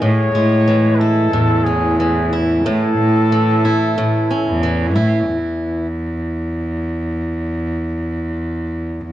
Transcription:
0.00 0.24 A2 loud
0.00 1.32 A2 medium
0.00 0.34 G#3 medium
0.00 1.00 G#4 medium
0.00 0.96 C#5 loud
0.34 1.25 A2 loud
0.34 3.85 G#3 medium
0.68 1.99 E3 medium
0.95 1.00 B4 medium
0.99 2.32 E4 medium
0.99 1.65 A4 medium
1.33 2.57 E2 medium
1.33 2.65 A2 medium
1.64 4.29 C#4 medium
1.64 1.97 G#4 medium
1.97 3.32 E3 medium
1.97 2.35 G#4 medium
2.33 3.64 E4 medium
2.64 2.87 A2 loud
2.64 3.97 A2 medium
2.64 4.59 A4 medium
2.98 3.89 A2 loud
3.32 4.63 E3 medium
3.65 4.95 E4 medium
3.98 5.37 A2 medium
4.31 5.37 C#4 medium
4.49 4.98 E2 medium
4.63 5.86 E3 medium
4.96 5.18 A2 loud
4.96 5.86 E4 medium
5.28 9.12 E2 medium

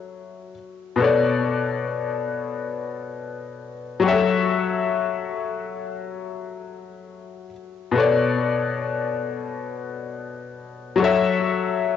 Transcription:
0.00 0.50 F#3 medium
0.00 0.51 F#4 medium
0.00 0.52 A4 medium
0.00 0.53 C#5 medium
0.00 0.54 E5 medium
0.96 3.98 B2 medium
0.96 3.99 B3 medium
1.00 4.00 A4 medium
1.00 4.01 C#5 medium
1.04 4.02 D5 medium
4.00 7.46 F#3 medium
4.00 7.47 F#4 medium
4.04 4.12 G4 medium
4.04 7.49 C#5 medium
4.08 7.51 A4 medium
4.08 7.50 E5 medium
7.91 10.94 B2 medium
7.91 10.95 B3 medium
7.96 10.96 A4 medium
7.96 10.97 C#5 medium
8.00 10.98 D5 medium
10.96 11.97 F#3 medium
10.96 11.97 F#4 medium
11.00 11.97 A4 medium
11.00 11.97 C#5 medium
11.04 11.97 E5 medium

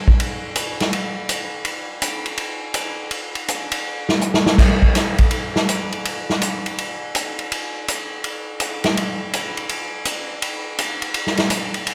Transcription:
0.08 kick medium
0.20 ride medium
0.56 hi-hat pedal soft
0.56 ride medium
0.80 snare soft
0.80 ride soft
0.93 ride medium
1.29 hi-hat pedal medium
1.29 ride medium
1.65 ride medium
2.02 hi-hat pedal medium
2.02 ride medium
2.26 ride soft
2.38 ride medium
2.74 hi-hat pedal soft
2.74 ride medium
3.11 ride medium
3.35 ride soft
3.48 hi-hat pedal medium
3.48 ride medium
3.72 ride medium
4.09 snare soft
4.21 hi-hat pedal medium
4.34 snare soft
4.46 snare medium
4.58 kick medium
4.58 snare soft
4.58 crash medium
4.82 kick soft
4.95 snare soft
4.95 hi-hat pedal soft
4.95 ride medium
5.18 kick medium
5.18 ride soft
5.31 ride medium
5.56 snare soft
5.69 hi-hat pedal medium
5.69 ride medium
5.92 ride soft
6.05 ride medium
6.30 snare soft
6.42 hi-hat pedal medium
6.42 ride medium
6.66 ride soft
6.78 ride medium
7.15 hi-hat pedal medium
7.15 ride medium
7.39 ride soft
7.52 ride medium
7.88 hi-hat pedal soft
7.88 ride medium
8.24 ride soft
8.60 hi-hat pedal soft
8.60 ride medium
8.84 snare soft
8.84 ride soft
8.97 ride medium
9.33 hi-hat pedal medium
9.33 ride medium
9.57 ride soft
9.69 ride medium
10.05 hi-hat pedal medium
10.05 ride medium
10.42 ride medium
10.78 hi-hat pedal medium
10.78 ride medium
11.02 ride soft
11.14 ride medium
11.27 snare soft
11.37 snare soft
11.37 ride soft
11.50 hi-hat pedal medium
11.50 ride medium
11.74 ride soft
11.87 ride medium

